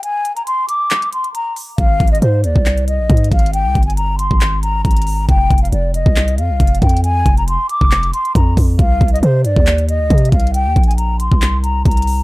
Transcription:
<<
  \new Staff \with { instrumentName = "Flute" } { \time 4/4 \key c \minor \tempo 4 = 137 aes''8. bes''16 c'''8 d'''4 c'''8 bes''8 r8 | f''8. ees''16 c''8 d''4 ees''4 f''8 | g''8. aes''16 bes''8 c'''4 bes''8 bes''4 | g''8. f''16 d''8 ees''4 f''4 g''8 |
aes''8. bes''16 c'''8 d'''4 c'''8 bes''8 r8 | f''8. ees''16 c''8 d''4 ees''4 f''8 | g''8. aes''16 bes''8 c'''4 bes''8 bes''4 | }
  \new Staff \with { instrumentName = "808-style bass" } { \clef bass \time 4/4 \key c \minor r1 | aes,,8 aes,,8 aes,8 ees,16 c,4 bes,,16 aes,8 aes,,8~ | aes,,16 c,16 g,,4~ g,,16 aes,,4~ aes,,16 aes,,4 | f,,8 f,,8 f,,8. c,8. f,16 c,16 f,,8 f,8~ |
f,8 f,,8. r8 f,,8. r8 f,8 f,8 | c,8 c,8 c8 g,16 ees,4 d,16 c8 c,8~ | c,16 ees,16 bes,,4~ bes,,16 c,4~ c,16 c,4 | }
  \new DrumStaff \with { instrumentName = "Drums" } \drummode { \time 4/4 hh8 hh16 hh16 hh8 hh8 <hc hh>16 hh16 hh16 hh16 hh8 hho8 | \tuplet 3/2 { <hh bd>16 r16 r16 <hh bd>16 hh16 hh16 } hh8 hh16 bd16 <hc hh>16 hh16 hh8 \tuplet 3/2 { <hh bd>16 hh16 hh16 <hh bd>16 hh16 hh16 } | \tuplet 3/2 { hh16 r16 r16 <hh bd>16 hh16 hh16 } hh8 hh16 bd16 <hc hh>8 hh8 <hh bd>32 hh32 hh32 hh32 hho8 | \tuplet 3/2 { <hh bd>16 r16 r16 <hh bd>16 hh16 hh16 } hh8 hh16 bd16 <hc hh>16 hh16 hh8 \tuplet 3/2 { <hh bd>16 hh16 hh16 <hh bd>16 hh16 hh16 } |
hh8 <hh bd>16 hh16 hh8 hh16 bd16 <hc hh>16 hh16 hh16 hh16 <hh bd>8 <hho bd>8 | \tuplet 3/2 { <hh bd>16 r16 r16 <hh bd>16 hh16 hh16 } hh8 hh16 bd16 <hc hh>16 hh16 hh8 \tuplet 3/2 { <hh bd>16 hh16 hh16 <hh bd>16 hh16 hh16 } | \tuplet 3/2 { hh16 r16 r16 <hh bd>16 hh16 hh16 } hh8 hh16 bd16 <hc hh>8 hh8 <hh bd>32 hh32 hh32 hh32 hho8 | }
>>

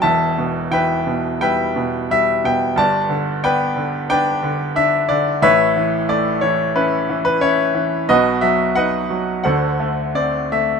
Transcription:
<<
  \new Staff \with { instrumentName = "Grand piano" } { \time 4/4 \key e \minor \tempo 4 = 90 << { a''4 g''4 g''4 e''8 g''8 | a''4 g''4 g''4 e''8 d''8 | e''4 d''8 cis''8 b'8. b'16 cis''4 | dis''8 e''8 fis''4 fis''4 d''8 e''8 | } \\ { e''4 <b' e''>4 <b' e''>2 | d''4 <b' d''>4 <b' d''>2 | <b' cis''>2 e'4 e'4 | <fis' b'>4 <b' dis''>4 <a' c''>2 | } >> }
  \new Staff \with { instrumentName = "Grand piano" } { \clef bass \time 4/4 \key e \minor <e,, e,>8 b,8 e8 b,8 g8 b,8 g8 b,8 | <g,, g,>8 d8 b8 d8 d'8 d8 d'8 d8 | <a,, a,>8 e8 a8 e8 cis'8 e8 cis'8 e8 | <b,, b,>8 fis8 dis'8 fis8 <d, d>8 a8 c'8 a8 | }
>>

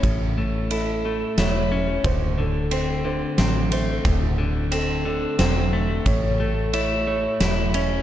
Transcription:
<<
  \new Staff \with { instrumentName = "Felt piano" } { \time 3/4 \key a \phrygian \tempo 4 = 90 cis''8 r8 a'8 a'8 cis''4 | c''8 a'8 c''8 c''4 c''8~ | c''8 r8 a'8 a'8 c''4 | cis''8 a'8 cis''8 cis''4 cis''8 | }
  \new Staff \with { instrumentName = "Clean electric guitar" } { \time 3/4 \key a \phrygian <a, a cis' e'>8 a8 e'8 a8 e'8 cis'8 | d,8 d8 c'8 d8 c'8 a8 | d,8 d8 c'8 d8 c'8 a8 | a,8 a8 e'8 a8 e'8 cis'8 | }
  \new Staff \with { instrumentName = "Fingered electric bass" } { \clef bass \time 3/4 \key a \phrygian a,,2 e,,4 | d,,2 a,,4 | d,,2 e,,4 | a,,2 e,,4 | }
  \new DrumStaff \with { instrumentName = "Drums" } \drummode { \time 3/4 <bd cymr>4 cymr4 <cymr sn>4 | <bd cymr>4 cymr4 <cymr sn>8 cymr8 | <bd cymr>4 cymr4 <cymr sn>4 | <bd cymr>4 cymr4 <cymr sn>8 cymr8 | }
>>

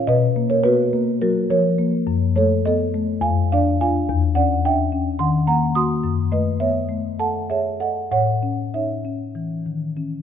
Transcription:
<<
  \new Staff \with { instrumentName = "Marimba" } { \time 7/8 \key b \dorian \tempo 4 = 104 <b' dis''>8. <ais' cis''>16 <fis' b'>4 <fis' ais'>8 <ais' cis''>4 | \key fis \dorian r8 <a' cis''>8 <a' dis''>4 <f'' aes''>8 <d'' f''>8 <f'' aes''>8 | r8 <d'' fis''>8 <e'' g''>4 <fis'' bis''>8 <fis'' ais''>8 <bis'' dis'''>8 | r8 <b' dis''>8 <cis'' e''>4 <fis'' a''>8 <cis'' e''>8 <dis'' fis''>8 |
<cis'' fis''>4 <cis'' e''>4 r4. | }
  \new Staff \with { instrumentName = "Marimba" } { \time 7/8 \key b \dorian b,8 ais8 b8 ais8 fis8 eis8 ais8 | \key fis \dorian fis,8 a8 b8 a8 f,8 d'8 <d' f'>8 | e,8 cis'8 d'8 cis'8 dis8 ais8 <ais fis'>8 | fis,8 a8 b8 a8 a'8 gis'8 a'8 |
a,8 cis'8 dis'8 cis'8 e8 dis8 cis'8 | }
>>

